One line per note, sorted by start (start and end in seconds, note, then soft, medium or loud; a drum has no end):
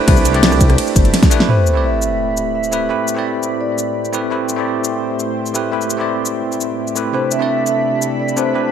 0.00 0.07 A3 loud
0.00 1.45 C4 medium
0.00 0.07 D4 medium
0.00 1.45 D4 medium
0.00 0.08 E4 medium
0.00 1.45 E4 medium
0.00 0.08 G4 medium
0.00 1.46 G4 medium
0.00 0.09 B4 loud
0.00 1.10 C5 medium
0.00 0.36 D5 loud
0.07 0.77 C2 loud
0.07 0.31 A3 medium
0.07 0.32 D4 medium
0.07 0.32 E4 medium
0.07 0.33 G4 medium
0.07 0.33 B4 loud
0.07 kick loud
0.07 closed hi-hat loud
0.07 ride medium
0.17 shaker soft
0.25 closed hi-hat medium
0.25 shaker medium
0.32 1.28 A3 loud
0.32 1.29 D4 medium
0.32 1.29 E4 medium
0.32 1.30 G4 medium
0.32 1.30 D5 loud
0.32 closed hi-hat soft
0.43 snare loud
0.43 closed hi-hat loud
0.43 ride medium
0.52 cross-stick medium
0.52 shaker soft
0.61 kick medium
0.61 closed hi-hat medium
0.61 shaker medium
0.70 cross-stick soft
0.70 closed hi-hat soft
0.78 closed hi-hat loud
0.78 ride medium
0.87 shaker soft
0.96 1.12 G1 loud
0.96 kick medium
0.96 closed hi-hat medium
0.96 shaker medium
1.05 closed hi-hat soft
1.14 snare medium
1.14 closed hi-hat loud
1.14 ride medium
1.23 kick loud
1.23 snare medium
1.23 closed hi-hat soft
1.23 shaker soft
1.30 1.46 A3 loud
1.30 1.47 D4 medium
1.30 1.47 E4 medium
1.30 1.47 G4 medium
1.30 1.47 B4 loud
1.30 closed hi-hat medium
1.30 shaker medium
1.40 snare medium
1.48 7.10 A2 medium
1.48 1.72 A3 medium
1.48 1.73 C4 medium
1.48 7.10 C4 medium
1.48 1.73 E4 medium
1.48 8.72 E4 medium
1.48 8.72 G4 medium
1.48 1.74 G4 medium
1.48 1.74 B4 medium
1.48 1.85 C5 medium
1.48 4.28 B5 medium
1.48 sub drop medium
1.67 shaker medium
1.73 2.69 A3 medium
1.73 2.70 C4 medium
1.73 2.70 E4 medium
1.73 2.71 G4 medium
1.73 2.71 D5 medium
1.84 2.54 E5 loud
2.02 shaker medium
2.37 shaker medium
2.55 3.22 E5 medium
2.64 shaker soft
2.71 2.87 A3 medium
2.71 2.88 C4 medium
2.71 2.88 E4 medium
2.71 2.88 G4 medium
2.71 2.88 B4 loud
2.71 shaker medium
2.89 3.13 A3 medium
2.89 3.14 C4 medium
2.89 3.14 E4 medium
2.89 3.15 G4 medium
2.89 3.15 B4 medium
3.08 shaker medium
3.15 4.10 A3 medium
3.15 4.11 C4 medium
3.15 4.11 E4 medium
3.15 4.12 G4 medium
3.15 4.12 D5 medium
3.43 shaker medium
3.61 4.10 D5 loud
3.78 shaker medium
4.05 shaker soft
4.12 4.29 A3 medium
4.12 4.29 C4 medium
4.12 4.29 E4 medium
4.12 4.29 G4 medium
4.12 4.30 B4 loud
4.12 shaker medium
4.30 4.55 A3 medium
4.30 4.55 C4 medium
4.30 4.56 E4 medium
4.30 4.56 G4 medium
4.30 4.56 B4 medium
4.30 7.11 C5 medium
4.49 shaker medium
4.56 5.52 A3 medium
4.56 5.52 C4 medium
4.56 5.53 E4 medium
4.56 5.53 G4 medium
4.56 5.54 D5 medium
4.84 shaker medium
5.20 shaker medium
5.46 shaker soft
5.54 5.70 A3 medium
5.54 5.70 C4 medium
5.54 5.70 E4 medium
5.54 5.71 G4 medium
5.54 5.71 B4 loud
5.54 shaker medium
5.71 5.96 A3 medium
5.71 5.97 C4 medium
5.71 5.97 E4 medium
5.71 5.97 G4 medium
5.71 5.97 B4 medium
5.82 shaker soft
5.90 shaker medium
5.97 6.93 A3 medium
5.97 6.93 C4 medium
5.97 6.94 E4 medium
5.97 6.94 G4 medium
5.97 6.95 D5 medium
6.25 shaker medium
6.52 shaker soft
6.61 shaker soft
6.87 shaker soft
6.95 7.11 A3 medium
6.95 7.11 C4 medium
6.95 7.12 E4 medium
6.95 7.12 G4 medium
6.95 7.12 B4 medium
6.95 shaker medium
7.13 7.37 C3 medium
7.13 8.72 C3 medium
7.13 7.38 A3 medium
7.13 7.38 D4 medium
7.13 8.72 D4 medium
7.13 7.38 E4 medium
7.13 7.38 G4 medium
7.13 8.72 A4 medium
7.13 7.39 B4 medium
7.13 7.22 C5 loud
7.13 8.72 B5 medium
7.31 7.65 E5 loud
7.31 shaker medium
7.38 8.34 C3 medium
7.38 8.34 A3 medium
7.38 8.35 D4 medium
7.38 8.35 E4 medium
7.38 8.36 G4 medium
7.38 8.36 D5 loud
7.67 7.99 E5 loud
7.67 shaker medium
8.02 shaker medium
8.20 8.38 D5 loud
8.29 shaker soft
8.36 8.52 C3 medium
8.36 8.52 A3 medium
8.36 8.53 D4 medium
8.36 8.53 E4 medium
8.36 8.53 G4 medium
8.36 8.53 B4 loud
8.36 8.72 C5 loud
8.36 shaker medium
8.54 8.72 C3 medium
8.54 8.72 A3 medium
8.54 8.72 D4 medium
8.54 8.72 E4 medium
8.54 8.72 G4 medium
8.54 8.72 B4 medium